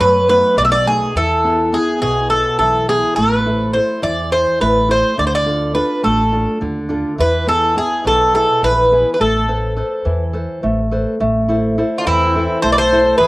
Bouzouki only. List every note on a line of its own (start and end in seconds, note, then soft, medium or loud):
0.00 0.28 B4 medium
0.29 0.58 B4 medium
0.58 0.64 D5 loud
0.65 0.71 E5 medium
0.72 0.85 D5 loud
0.87 1.14 G#4 medium
1.17 1.75 A4 medium
1.74 2.00 G#4 medium
2.02 2.30 G#4 medium
2.30 2.58 A4 medium
2.59 2.86 A4 medium
2.89 3.15 G#4 medium
3.16 3.73 B4 medium
3.73 4.01 C5 medium
4.03 4.30 D5 medium
4.32 4.59 C5 medium
4.61 4.88 B4 medium
4.91 5.17 C5 medium
5.19 5.26 D5 medium
5.27 5.34 C5 medium
5.35 5.73 D5 medium
5.75 6.04 B4 medium
6.04 6.58 A4 medium
7.20 7.47 B4 medium
7.49 7.77 A4 medium
7.78 8.04 G#4 medium
8.07 8.34 A4 medium
8.35 8.64 A4 medium
8.64 9.09 B4 medium
9.14 9.20 B4 medium
9.21 10.88 A4 medium
11.98 12.06 F4 medium
12.07 12.60 E4 medium
12.62 12.70 C5 medium
12.73 12.78 D5 medium
12.78 13.17 C5 loud
13.18 13.27 B4 medium